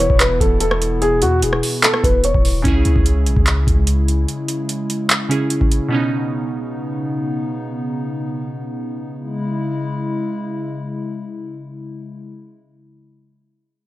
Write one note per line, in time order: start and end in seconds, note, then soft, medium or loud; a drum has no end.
0.00 2.62 B2 medium
0.00 2.60 E3 medium
0.00 2.62 B3 medium
0.00 2.61 E4 medium
0.00 2.62 B4 medium
0.00 0.16 C#5 medium
0.10 0.39 E1 loud
0.10 kick loud
0.20 0.36 B4 medium
0.20 clap loud
0.20 closed hi-hat medium
0.40 1.24 E1 loud
0.40 0.57 A4 medium
0.40 kick loud
0.40 closed hi-hat medium
0.60 0.99 A4 medium
0.60 closed hi-hat loud
0.71 cross-stick loud
0.82 closed hi-hat medium
1.02 1.18 G#4 loud
1.02 closed hi-hat medium
1.22 1.44 E2 loud
1.22 1.39 F#4 medium
1.22 closed hi-hat medium
1.42 1.62 E1 loud
1.42 1.81 G#4 medium
1.42 closed hi-hat medium
1.53 cross-stick medium
1.63 open hi-hat medium
1.83 2.00 A4 loud
1.83 clap loud
1.83 closed hi-hat medium
1.94 cross-stick loud
2.04 2.33 E1 loud
2.04 2.20 B4 medium
2.04 kick loud
2.04 closed hi-hat medium
2.24 2.63 C#5 medium
2.24 closed hi-hat loud
2.34 2.64 D#1 loud
2.34 kick loud
2.45 open hi-hat medium
2.62 2.85 C#2 loud
2.62 5.25 C#3 medium
2.62 5.88 C#3 medium
2.62 5.88 G#3 medium
2.62 5.26 C#4 medium
2.62 5.88 E4 medium
2.62 5.27 E4 medium
2.62 kick loud
2.62 closed hi-hat medium
2.68 5.28 G#4 medium
2.85 2.95 C#2 loud
2.85 closed hi-hat medium
2.96 3.28 C#2 loud
2.96 kick medium
3.06 closed hi-hat medium
3.26 3.36 B1 loud
3.26 closed hi-hat medium
3.37 3.66 C#2 loud
3.37 kick loud
3.47 clap loud
3.47 closed hi-hat medium
3.67 4.26 C#2 loud
3.67 kick medium
3.67 closed hi-hat medium
3.87 closed hi-hat loud
4.08 closed hi-hat medium
4.28 closed hi-hat medium
4.48 closed hi-hat medium
4.69 closed hi-hat medium
4.90 closed hi-hat medium
5.10 clap loud
5.10 closed hi-hat medium
5.29 5.91 C#3 soft
5.29 5.91 C#4 soft
5.29 5.92 E4 soft
5.29 5.92 G#4 medium
5.29 closed hi-hat medium
5.50 closed hi-hat medium
5.61 kick loud
5.72 closed hi-hat medium
5.88 9.13 B2 medium
5.88 9.15 C#3 medium
5.88 9.14 B3 medium
5.88 9.15 B3 medium
5.88 9.15 C#4 medium
5.88 9.15 D#4 medium
5.94 9.15 D#4 medium
9.18 12.33 C#3 medium
9.18 12.33 G#3 medium
9.18 12.33 E4 medium